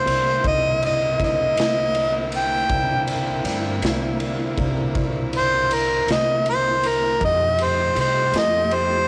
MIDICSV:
0, 0, Header, 1, 7, 480
1, 0, Start_track
1, 0, Tempo, 750939
1, 1724, Time_signature, 12, 3, 24, 8
1, 5803, End_track
2, 0, Start_track
2, 0, Title_t, "Harmonica"
2, 0, Program_c, 0, 22
2, 0, Note_on_c, 0, 72, 90
2, 273, Note_off_c, 0, 72, 0
2, 303, Note_on_c, 0, 75, 100
2, 527, Note_off_c, 0, 75, 0
2, 547, Note_on_c, 0, 75, 90
2, 769, Note_off_c, 0, 75, 0
2, 795, Note_on_c, 0, 75, 94
2, 1478, Note_off_c, 0, 75, 0
2, 1511, Note_on_c, 0, 79, 98
2, 1963, Note_off_c, 0, 79, 0
2, 3434, Note_on_c, 0, 72, 101
2, 3668, Note_on_c, 0, 70, 83
2, 3678, Note_off_c, 0, 72, 0
2, 3889, Note_off_c, 0, 70, 0
2, 3912, Note_on_c, 0, 75, 87
2, 4131, Note_off_c, 0, 75, 0
2, 4153, Note_on_c, 0, 72, 100
2, 4395, Note_on_c, 0, 70, 88
2, 4405, Note_off_c, 0, 72, 0
2, 4613, Note_off_c, 0, 70, 0
2, 4633, Note_on_c, 0, 75, 84
2, 4879, Note_on_c, 0, 72, 92
2, 4888, Note_off_c, 0, 75, 0
2, 5095, Note_off_c, 0, 72, 0
2, 5117, Note_on_c, 0, 72, 89
2, 5334, Note_off_c, 0, 72, 0
2, 5358, Note_on_c, 0, 75, 88
2, 5592, Note_on_c, 0, 72, 96
2, 5602, Note_off_c, 0, 75, 0
2, 5803, Note_off_c, 0, 72, 0
2, 5803, End_track
3, 0, Start_track
3, 0, Title_t, "Tine electric piano"
3, 0, Program_c, 1, 4
3, 41, Note_on_c, 1, 64, 58
3, 42, Note_on_c, 1, 70, 55
3, 43, Note_on_c, 1, 74, 70
3, 223, Note_off_c, 1, 64, 0
3, 223, Note_off_c, 1, 70, 0
3, 224, Note_off_c, 1, 74, 0
3, 273, Note_on_c, 1, 64, 57
3, 276, Note_on_c, 1, 70, 60
3, 277, Note_on_c, 1, 74, 65
3, 459, Note_off_c, 1, 64, 0
3, 460, Note_off_c, 1, 70, 0
3, 460, Note_off_c, 1, 74, 0
3, 521, Note_on_c, 1, 64, 58
3, 521, Note_on_c, 1, 70, 56
3, 521, Note_on_c, 1, 74, 66
3, 703, Note_off_c, 1, 64, 0
3, 703, Note_off_c, 1, 70, 0
3, 703, Note_off_c, 1, 74, 0
3, 763, Note_on_c, 1, 70, 51
3, 764, Note_on_c, 1, 64, 60
3, 764, Note_on_c, 1, 74, 66
3, 944, Note_off_c, 1, 64, 0
3, 944, Note_off_c, 1, 70, 0
3, 944, Note_off_c, 1, 74, 0
3, 999, Note_on_c, 1, 64, 61
3, 999, Note_on_c, 1, 70, 56
3, 999, Note_on_c, 1, 76, 71
3, 1181, Note_off_c, 1, 64, 0
3, 1182, Note_off_c, 1, 70, 0
3, 1182, Note_off_c, 1, 76, 0
3, 1246, Note_on_c, 1, 70, 49
3, 1247, Note_on_c, 1, 64, 60
3, 1247, Note_on_c, 1, 74, 66
3, 1425, Note_off_c, 1, 64, 0
3, 1425, Note_off_c, 1, 70, 0
3, 1426, Note_off_c, 1, 74, 0
3, 1482, Note_on_c, 1, 64, 58
3, 1482, Note_on_c, 1, 70, 50
3, 1485, Note_on_c, 1, 76, 66
3, 1663, Note_off_c, 1, 64, 0
3, 1663, Note_off_c, 1, 70, 0
3, 1664, Note_off_c, 1, 76, 0
3, 1719, Note_on_c, 1, 64, 69
3, 1722, Note_on_c, 1, 74, 72
3, 1723, Note_on_c, 1, 70, 66
3, 1902, Note_off_c, 1, 64, 0
3, 1903, Note_off_c, 1, 74, 0
3, 1904, Note_off_c, 1, 70, 0
3, 1963, Note_on_c, 1, 74, 62
3, 1964, Note_on_c, 1, 64, 53
3, 1965, Note_on_c, 1, 70, 50
3, 2143, Note_off_c, 1, 74, 0
3, 2144, Note_off_c, 1, 64, 0
3, 2145, Note_off_c, 1, 70, 0
3, 2206, Note_on_c, 1, 70, 63
3, 2207, Note_on_c, 1, 64, 70
3, 2208, Note_on_c, 1, 74, 76
3, 2385, Note_off_c, 1, 64, 0
3, 2385, Note_off_c, 1, 70, 0
3, 2386, Note_off_c, 1, 74, 0
3, 2446, Note_on_c, 1, 64, 63
3, 2447, Note_on_c, 1, 70, 58
3, 2448, Note_on_c, 1, 74, 71
3, 2625, Note_off_c, 1, 64, 0
3, 2625, Note_off_c, 1, 70, 0
3, 2626, Note_off_c, 1, 74, 0
3, 2686, Note_on_c, 1, 70, 57
3, 2687, Note_on_c, 1, 74, 64
3, 2688, Note_on_c, 1, 64, 59
3, 2865, Note_off_c, 1, 70, 0
3, 2865, Note_off_c, 1, 74, 0
3, 2866, Note_off_c, 1, 64, 0
3, 2925, Note_on_c, 1, 64, 64
3, 2925, Note_on_c, 1, 70, 60
3, 2926, Note_on_c, 1, 74, 76
3, 3104, Note_off_c, 1, 64, 0
3, 3105, Note_off_c, 1, 70, 0
3, 3105, Note_off_c, 1, 74, 0
3, 3170, Note_on_c, 1, 64, 67
3, 3171, Note_on_c, 1, 74, 69
3, 3172, Note_on_c, 1, 70, 64
3, 3347, Note_off_c, 1, 64, 0
3, 3348, Note_off_c, 1, 70, 0
3, 3348, Note_off_c, 1, 74, 0
3, 3405, Note_on_c, 1, 74, 54
3, 3406, Note_on_c, 1, 64, 58
3, 3408, Note_on_c, 1, 70, 53
3, 3585, Note_off_c, 1, 64, 0
3, 3585, Note_off_c, 1, 74, 0
3, 3586, Note_off_c, 1, 70, 0
3, 3649, Note_on_c, 1, 64, 54
3, 3652, Note_on_c, 1, 70, 54
3, 3653, Note_on_c, 1, 74, 60
3, 3827, Note_off_c, 1, 64, 0
3, 3828, Note_off_c, 1, 70, 0
3, 3829, Note_off_c, 1, 74, 0
3, 3886, Note_on_c, 1, 64, 56
3, 3886, Note_on_c, 1, 74, 62
3, 4065, Note_off_c, 1, 64, 0
3, 4065, Note_off_c, 1, 74, 0
3, 4122, Note_on_c, 1, 64, 57
3, 4122, Note_on_c, 1, 70, 48
3, 4124, Note_on_c, 1, 76, 62
3, 4303, Note_off_c, 1, 64, 0
3, 4303, Note_off_c, 1, 70, 0
3, 4304, Note_off_c, 1, 76, 0
3, 4364, Note_on_c, 1, 64, 59
3, 4366, Note_on_c, 1, 70, 53
3, 4366, Note_on_c, 1, 72, 61
3, 4544, Note_off_c, 1, 64, 0
3, 4545, Note_off_c, 1, 70, 0
3, 4545, Note_off_c, 1, 72, 0
3, 4604, Note_on_c, 1, 67, 70
3, 4605, Note_on_c, 1, 75, 74
3, 4606, Note_on_c, 1, 69, 66
3, 4784, Note_off_c, 1, 67, 0
3, 4785, Note_off_c, 1, 69, 0
3, 4785, Note_off_c, 1, 75, 0
3, 4853, Note_on_c, 1, 69, 51
3, 4853, Note_on_c, 1, 75, 56
3, 4854, Note_on_c, 1, 67, 53
3, 5029, Note_off_c, 1, 67, 0
3, 5029, Note_off_c, 1, 69, 0
3, 5029, Note_off_c, 1, 75, 0
3, 5092, Note_on_c, 1, 67, 62
3, 5092, Note_on_c, 1, 69, 54
3, 5094, Note_on_c, 1, 75, 63
3, 5268, Note_off_c, 1, 67, 0
3, 5268, Note_off_c, 1, 69, 0
3, 5269, Note_off_c, 1, 75, 0
3, 5330, Note_on_c, 1, 67, 50
3, 5332, Note_on_c, 1, 75, 58
3, 5333, Note_on_c, 1, 69, 50
3, 5508, Note_off_c, 1, 67, 0
3, 5509, Note_off_c, 1, 69, 0
3, 5509, Note_off_c, 1, 75, 0
3, 5575, Note_on_c, 1, 69, 49
3, 5575, Note_on_c, 1, 75, 64
3, 5576, Note_on_c, 1, 67, 52
3, 5750, Note_off_c, 1, 67, 0
3, 5750, Note_off_c, 1, 69, 0
3, 5750, Note_off_c, 1, 75, 0
3, 5803, End_track
4, 0, Start_track
4, 0, Title_t, "Tonewheel organ"
4, 0, Program_c, 2, 16
4, 0, Note_on_c, 2, 50, 69
4, 0, Note_on_c, 2, 60, 72
4, 0, Note_on_c, 2, 64, 70
4, 0, Note_on_c, 2, 70, 74
4, 1693, Note_off_c, 2, 70, 0
4, 1694, Note_off_c, 2, 64, 0
4, 1695, Note_off_c, 2, 60, 0
4, 1696, Note_off_c, 2, 50, 0
4, 1721, Note_on_c, 2, 60, 74
4, 1722, Note_on_c, 2, 50, 71
4, 1723, Note_on_c, 2, 64, 69
4, 1723, Note_on_c, 2, 70, 67
4, 4577, Note_off_c, 2, 60, 0
4, 4578, Note_off_c, 2, 50, 0
4, 4578, Note_off_c, 2, 70, 0
4, 4579, Note_off_c, 2, 64, 0
4, 4597, Note_on_c, 2, 57, 63
4, 4597, Note_on_c, 2, 67, 65
4, 4599, Note_on_c, 2, 63, 74
4, 4600, Note_on_c, 2, 65, 72
4, 5803, Note_off_c, 2, 57, 0
4, 5803, Note_off_c, 2, 63, 0
4, 5803, Note_off_c, 2, 65, 0
4, 5803, Note_off_c, 2, 67, 0
4, 5803, End_track
5, 0, Start_track
5, 0, Title_t, "Saxophone section"
5, 0, Program_c, 3, 65
5, 0, Note_on_c, 3, 58, 78
5, 0, Note_on_c, 3, 60, 70
5, 0, Note_on_c, 3, 64, 81
5, 4493, Note_off_c, 3, 58, 0
5, 4493, Note_off_c, 3, 60, 0
5, 4493, Note_off_c, 3, 64, 0
5, 4601, Note_on_c, 3, 63, 71
5, 4604, Note_on_c, 3, 67, 90
5, 4606, Note_on_c, 3, 57, 73
5, 5803, Note_off_c, 3, 57, 0
5, 5803, Note_off_c, 3, 63, 0
5, 5803, Note_off_c, 3, 67, 0
5, 5803, End_track
6, 0, Start_track
6, 0, Title_t, "Upright bass"
6, 0, Program_c, 4, 32
6, 37, Note_on_c, 4, 36, 98
6, 261, Note_off_c, 4, 36, 0
6, 282, Note_on_c, 4, 36, 105
6, 977, Note_off_c, 4, 36, 0
6, 997, Note_on_c, 4, 36, 76
6, 1695, Note_off_c, 4, 36, 0
6, 1721, Note_on_c, 4, 36, 90
6, 2177, Note_off_c, 4, 36, 0
6, 2201, Note_on_c, 4, 43, 106
6, 2423, Note_off_c, 4, 43, 0
6, 2442, Note_on_c, 4, 36, 98
6, 2897, Note_off_c, 4, 36, 0
6, 2924, Note_on_c, 4, 36, 106
6, 3145, Note_off_c, 4, 36, 0
6, 3165, Note_on_c, 4, 36, 92
6, 3859, Note_off_c, 4, 36, 0
6, 3880, Note_on_c, 4, 36, 82
6, 4577, Note_off_c, 4, 36, 0
6, 4606, Note_on_c, 4, 41, 98
6, 5060, Note_off_c, 4, 41, 0
6, 5083, Note_on_c, 4, 36, 102
6, 5305, Note_off_c, 4, 36, 0
6, 5322, Note_on_c, 4, 41, 105
6, 5778, Note_off_c, 4, 41, 0
6, 5803, End_track
7, 0, Start_track
7, 0, Title_t, "Drums"
7, 47, Note_on_c, 9, 51, 63
7, 111, Note_off_c, 9, 51, 0
7, 284, Note_on_c, 9, 36, 97
7, 284, Note_on_c, 9, 51, 73
7, 348, Note_off_c, 9, 36, 0
7, 348, Note_off_c, 9, 51, 0
7, 527, Note_on_c, 9, 51, 53
7, 591, Note_off_c, 9, 51, 0
7, 765, Note_on_c, 9, 36, 86
7, 768, Note_on_c, 9, 51, 63
7, 784, Note_on_c, 9, 38, 35
7, 829, Note_off_c, 9, 36, 0
7, 832, Note_off_c, 9, 51, 0
7, 848, Note_off_c, 9, 38, 0
7, 1006, Note_on_c, 9, 51, 88
7, 1022, Note_on_c, 9, 38, 102
7, 1070, Note_off_c, 9, 51, 0
7, 1086, Note_off_c, 9, 38, 0
7, 1245, Note_on_c, 9, 51, 60
7, 1309, Note_off_c, 9, 51, 0
7, 1482, Note_on_c, 9, 51, 61
7, 1546, Note_off_c, 9, 51, 0
7, 1721, Note_on_c, 9, 51, 76
7, 1723, Note_on_c, 9, 36, 99
7, 1785, Note_off_c, 9, 51, 0
7, 1787, Note_off_c, 9, 36, 0
7, 1965, Note_on_c, 9, 51, 66
7, 2029, Note_off_c, 9, 51, 0
7, 2204, Note_on_c, 9, 51, 65
7, 2220, Note_on_c, 9, 38, 31
7, 2268, Note_off_c, 9, 51, 0
7, 2284, Note_off_c, 9, 38, 0
7, 2443, Note_on_c, 9, 51, 87
7, 2459, Note_on_c, 9, 38, 112
7, 2507, Note_off_c, 9, 51, 0
7, 2523, Note_off_c, 9, 38, 0
7, 2684, Note_on_c, 9, 51, 65
7, 2748, Note_off_c, 9, 51, 0
7, 2925, Note_on_c, 9, 36, 88
7, 2925, Note_on_c, 9, 51, 67
7, 2989, Note_off_c, 9, 36, 0
7, 2989, Note_off_c, 9, 51, 0
7, 3164, Note_on_c, 9, 51, 77
7, 3166, Note_on_c, 9, 36, 111
7, 3228, Note_off_c, 9, 51, 0
7, 3230, Note_off_c, 9, 36, 0
7, 3406, Note_on_c, 9, 51, 66
7, 3470, Note_off_c, 9, 51, 0
7, 3647, Note_on_c, 9, 51, 70
7, 3711, Note_off_c, 9, 51, 0
7, 3887, Note_on_c, 9, 51, 75
7, 3903, Note_on_c, 9, 38, 105
7, 3950, Note_off_c, 9, 51, 0
7, 3966, Note_off_c, 9, 38, 0
7, 4127, Note_on_c, 9, 51, 64
7, 4191, Note_off_c, 9, 51, 0
7, 4368, Note_on_c, 9, 51, 51
7, 4432, Note_off_c, 9, 51, 0
7, 4608, Note_on_c, 9, 51, 77
7, 4609, Note_on_c, 9, 36, 107
7, 4672, Note_off_c, 9, 51, 0
7, 4673, Note_off_c, 9, 36, 0
7, 4848, Note_on_c, 9, 51, 63
7, 4912, Note_off_c, 9, 51, 0
7, 5089, Note_on_c, 9, 51, 57
7, 5153, Note_off_c, 9, 51, 0
7, 5327, Note_on_c, 9, 51, 72
7, 5343, Note_on_c, 9, 38, 109
7, 5391, Note_off_c, 9, 51, 0
7, 5407, Note_off_c, 9, 38, 0
7, 5568, Note_on_c, 9, 51, 59
7, 5632, Note_off_c, 9, 51, 0
7, 5803, End_track
0, 0, End_of_file